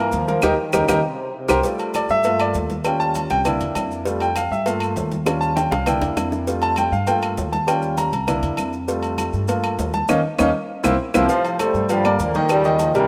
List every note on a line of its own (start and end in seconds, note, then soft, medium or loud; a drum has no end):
0.00 0.11 E3 loud
0.00 0.23 A#3 medium
0.00 0.23 A#4 medium
0.00 0.23 A#5 medium
0.12 0.41 D#2 medium
0.12 0.44 F3 medium
0.12 cowbell medium
0.12 high conga medium
0.12 maracas medium
0.28 0.41 A#3 medium
0.28 0.41 A#4 medium
0.28 0.41 A#5 medium
0.28 cowbell medium
0.28 high conga loud
0.28 maracas soft
0.42 0.55 D#2 loud
0.42 0.74 D#3 loud
0.42 0.53 D#4 loud
0.42 0.53 G4 loud
0.42 0.53 A#4 medium
0.42 cowbell loud
0.42 high conga loud
0.42 high timbale loud
0.42 claves loud
0.42 maracas loud
0.73 0.85 D#2 medium
0.73 1.04 C#3 medium
0.73 0.83 D#4 medium
0.73 0.83 G4 medium
0.73 0.83 A#4 medium
0.73 cowbell loud
0.73 high conga loud
0.73 high timbale loud
0.73 claves loud
0.73 maracas loud
0.88 1.00 D#2 loud
0.88 0.98 D#4 loud
0.88 0.98 G4 medium
0.88 0.98 A#4 loud
0.88 cowbell loud
0.88 high conga medium
0.88 high timbale loud
0.88 claves loud
0.88 maracas loud
1.05 1.35 C3 medium
1.36 1.63 C3 medium
1.48 1.61 C2 loud
1.48 1.59 G4 loud
1.48 1.59 A#4 loud
1.48 1.59 C5 loud
1.48 cowbell loud
1.48 high conga loud
1.48 high timbale loud
1.48 claves loud
1.48 maracas loud
1.63 2.22 G3 medium
1.63 2.22 A3 medium
1.63 2.23 F4 medium
1.63 cowbell loud
1.63 high conga soft
1.63 maracas medium
1.79 high conga soft
1.79 low agogo medium
1.79 maracas soft
1.94 2.10 D5 medium
1.94 cowbell medium
1.94 high conga loud
1.94 low agogo loud
1.94 claves medium
1.94 maracas medium
2.09 2.52 G2 medium
2.09 2.38 E5 loud
2.09 high conga soft
2.09 maracas soft
2.23 2.68 A3 medium
2.23 2.69 A#3 medium
2.23 2.69 F4 medium
2.23 cowbell loud
2.23 high conga soft
2.23 low agogo medium
2.23 maracas medium
2.39 2.55 D5 medium
2.39 high conga soft
2.39 low agogo loud
2.39 claves medium
2.39 maracas soft
2.54 3.25 D#2 loud
2.54 cowbell medium
2.54 high conga medium
2.54 maracas medium
2.70 cowbell medium
2.70 high conga loud
2.70 maracas soft
2.84 3.43 G3 medium
2.84 3.43 C#4 medium
2.84 3.43 F4 medium
2.84 3.01 G5 medium
2.84 cowbell loud
2.84 high conga soft
2.84 low agogo loud
2.84 claves medium
2.84 maracas medium
3.00 3.28 A5 loud
3.00 high conga soft
3.00 maracas soft
3.15 cowbell medium
3.15 high conga medium
3.15 low agogo medium
3.15 maracas medium
3.30 3.59 C2 medium
3.30 3.40 G5 loud
3.30 cowbell medium
3.30 low agogo medium
3.30 maracas soft
3.45 4.03 A#3 medium
3.45 4.03 D4 medium
3.45 4.03 E4 medium
3.45 cowbell loud
3.45 high conga soft
3.45 low conga medium
3.45 low agogo loud
3.45 claves medium
3.45 maracas medium
3.60 3.75 E2 medium
3.60 high conga soft
3.60 low conga medium
3.60 low agogo medium
3.60 maracas soft
3.75 4.46 F2 loud
3.75 cowbell medium
3.75 high conga medium
3.75 low timbale medium
3.75 low agogo loud
3.75 claves medium
3.75 maracas medium
3.91 high conga soft
3.91 maracas soft
4.05 4.26 G3 medium
4.05 4.26 A3 medium
4.05 4.26 F4 medium
4.05 cowbell loud
4.05 high conga soft
4.05 maracas medium
4.20 4.36 G5 medium
4.20 high conga soft
4.20 low agogo medium
4.20 maracas soft
4.36 4.51 F5 medium
4.36 cowbell medium
4.36 high conga loud
4.36 low agogo loud
4.36 claves medium
4.36 maracas medium
4.51 4.93 G2 medium
4.51 4.66 E5 medium
4.51 high conga soft
4.51 maracas soft
4.66 5.09 A3 medium
4.66 5.10 A#3 medium
4.66 5.10 F4 medium
4.66 4.81 F5 medium
4.66 cowbell loud
4.66 high conga soft
4.66 low agogo medium
4.66 maracas medium
4.80 high conga soft
4.80 low agogo loud
4.80 claves medium
4.80 maracas soft
4.96 5.66 D#2 loud
4.96 cowbell medium
4.96 high conga medium
4.96 low timbale medium
4.96 maracas medium
5.12 cowbell medium
5.12 high conga loud
5.12 maracas soft
5.26 5.84 G3 medium
5.26 5.84 C#4 medium
5.26 5.84 F4 medium
5.26 cowbell loud
5.26 high bongo loud
5.26 high conga soft
5.26 low agogo loud
5.26 claves medium
5.26 maracas medium
5.41 5.56 A5 loud
5.41 high conga soft
5.41 maracas soft
5.56 5.71 G5 medium
5.56 cowbell medium
5.56 low bongo loud
5.56 high conga medium
5.56 low agogo medium
5.56 maracas medium
5.71 6.00 C2 medium
5.71 5.86 F5 medium
5.71 cowbell medium
5.71 high bongo loud
5.71 low agogo medium
5.71 maracas soft
5.86 6.44 A#3 medium
5.86 6.45 D4 medium
5.86 6.45 E4 medium
5.86 6.02 G5 medium
5.86 cowbell loud
5.86 low bongo medium
5.86 high conga soft
5.86 low conga medium
5.86 low agogo loud
5.86 claves medium
5.86 maracas medium
6.02 6.16 E2 medium
6.02 low bongo medium
6.02 high conga soft
6.02 low conga medium
6.02 low agogo medium
6.02 maracas soft
6.16 6.87 F2 medium
6.16 cowbell medium
6.16 low bongo medium
6.16 high conga medium
6.16 low agogo medium
6.16 claves medium
6.16 maracas medium
6.32 low bongo medium
6.32 high conga soft
6.32 maracas soft
6.47 6.90 G3 medium
6.47 6.91 A3 soft
6.47 6.91 F4 medium
6.47 cowbell loud
6.47 high conga soft
6.47 maracas medium
6.62 6.77 A5 loud
6.62 high conga soft
6.62 low agogo medium
6.62 maracas soft
6.76 6.92 G5 medium
6.76 cowbell medium
6.76 high conga loud
6.76 low agogo loud
6.76 claves medium
6.76 maracas medium
6.92 7.34 G2 loud
6.92 7.07 F5 medium
6.92 high conga soft
6.92 maracas soft
7.07 7.50 A3 medium
7.07 7.51 A#3 medium
7.07 7.51 F4 medium
7.07 7.17 G5 medium
7.07 cowbell loud
7.07 high conga soft
7.07 low agogo medium
7.07 maracas medium
7.22 high conga soft
7.22 low agogo loud
7.22 claves medium
7.22 maracas soft
7.37 8.08 D#2 loud
7.37 cowbell medium
7.37 high conga medium
7.37 low timbale medium
7.37 maracas medium
7.53 7.67 A5 medium
7.53 cowbell medium
7.53 high conga loud
7.53 maracas soft
7.67 8.10 G3 medium
7.67 8.11 C#4 soft
7.67 8.11 F4 medium
7.67 7.96 G5 medium
7.67 cowbell loud
7.67 high conga soft
7.67 low agogo loud
7.67 claves medium
7.67 maracas medium
7.82 high conga soft
7.82 maracas soft
7.97 8.40 A#5 medium
7.97 cowbell medium
7.97 high conga loud
7.97 low agogo medium
7.97 maracas medium
8.12 8.41 C2 medium
8.12 cowbell medium
8.12 low agogo medium
8.12 maracas soft
8.27 8.71 A#3 medium
8.27 8.71 D4 medium
8.27 8.71 E4 medium
8.27 cowbell loud
8.27 high conga soft
8.27 low conga medium
8.27 low agogo loud
8.27 claves medium
8.27 maracas medium
8.42 8.57 E2 medium
8.42 high conga soft
8.42 low conga medium
8.42 low agogo medium
8.42 maracas soft
8.57 9.28 F2 medium
8.57 cowbell medium
8.57 high conga medium
8.57 low agogo medium
8.57 claves medium
8.57 maracas medium
8.73 high conga soft
8.73 maracas soft
8.88 9.45 G3 medium
8.88 9.46 A3 medium
8.88 9.46 F4 medium
8.88 cowbell loud
8.88 high conga soft
8.88 maracas medium
9.03 high conga soft
9.03 low agogo medium
9.03 maracas soft
9.18 cowbell medium
9.18 high conga loud
9.18 low agogo loud
9.18 claves medium
9.18 maracas medium
9.33 9.76 G2 medium
9.33 maracas soft
9.48 9.91 A3 medium
9.48 9.91 A#3 medium
9.48 9.92 F4 medium
9.48 cowbell loud
9.48 high conga soft
9.48 low agogo medium
9.48 maracas medium
9.64 high conga soft
9.64 low agogo loud
9.64 claves medium
9.64 maracas soft
9.79 10.07 D#2 loud
9.79 cowbell medium
9.79 high conga medium
9.79 low timbale medium
9.79 maracas medium
9.94 10.09 A5 medium
9.94 cowbell medium
9.94 high conga loud
9.94 maracas soft
10.08 10.20 D#2 loud
10.08 10.19 A#3 loud
10.08 10.19 C#4 medium
10.08 10.19 D#4 medium
10.08 cowbell loud
10.08 high conga loud
10.08 high timbale loud
10.08 claves loud
10.08 maracas medium
10.38 10.51 D#2 loud
10.38 10.49 A#3 loud
10.38 10.49 C#4 loud
10.38 10.49 D#4 loud
10.38 cowbell loud
10.38 high conga loud
10.38 high timbale loud
10.38 claves loud
10.38 maracas loud
10.84 10.96 C2 loud
10.84 10.94 A#3 loud
10.84 10.94 C4 loud
10.84 10.94 E4 medium
10.84 cowbell loud
10.84 high conga loud
10.84 high timbale loud
10.84 claves loud
10.84 maracas loud
11.14 11.26 C2 loud
11.14 11.72 A2 medium
11.14 11.60 C3 medium
11.14 11.57 F3 loud
11.14 11.24 A#3 loud
11.14 11.24 C4 loud
11.14 11.24 E4 loud
11.14 cowbell loud
11.14 high conga loud
11.14 high timbale loud
11.14 claves loud
11.14 maracas loud
11.29 11.54 F3 medium
11.29 11.54 F4 medium
11.29 11.54 F5 medium
11.29 cowbell loud
11.29 high conga soft
11.29 maracas medium
11.45 high conga soft
11.45 low agogo medium
11.45 maracas soft
11.59 11.88 C3 medium
11.59 11.90 G3 loud
11.59 11.84 A3 medium
11.59 11.84 A4 medium
11.59 11.84 C5 medium
11.59 cowbell medium
11.59 high conga loud
11.59 low agogo loud
11.59 claves medium
11.59 maracas medium
11.74 12.16 G2 loud
11.74 high conga soft
11.74 maracas soft
11.89 12.47 A#2 medium
11.89 12.20 D3 medium
11.89 12.02 F3 medium
11.89 12.18 G3 loud
11.89 12.02 F4 medium
11.89 12.02 F5 medium
11.89 cowbell loud
11.89 low agogo medium
11.89 maracas medium
12.05 12.29 A#3 medium
12.05 12.29 A#4 medium
12.05 12.30 D5 medium
12.05 high conga soft
12.05 low agogo loud
12.05 claves medium
12.05 maracas soft
12.19 12.89 D#2 loud
12.19 12.49 D3 medium
12.19 12.49 F3 medium
12.19 12.48 A#3 loud
12.19 cowbell medium
12.19 high conga medium
12.19 maracas medium
12.34 12.60 D#3 medium
12.34 12.60 D#4 medium
12.34 12.60 D#5 loud
12.34 cowbell medium
12.34 high conga loud
12.34 maracas soft
12.49 12.94 A#2 medium
12.49 13.06 C#3 medium
12.49 12.78 G3 loud
12.49 cowbell loud
12.49 high conga soft
12.49 low agogo loud
12.49 claves medium
12.49 maracas medium
12.64 12.90 D#3 medium
12.64 12.90 D#4 loud
12.64 12.90 D#5 medium
12.64 high conga soft
12.64 maracas soft
12.79 12.95 F3 loud
12.79 cowbell medium
12.79 high conga loud
12.79 low agogo medium
12.79 maracas medium
12.94 13.07 C2 loud
12.94 13.07 G2 medium
12.94 13.07 A#2 medium
12.94 13.07 E3 loud
12.94 13.07 G3 medium
12.94 13.07 G4 medium
12.94 13.07 A#4 medium
12.94 cowbell medium
12.94 low agogo medium
12.94 maracas soft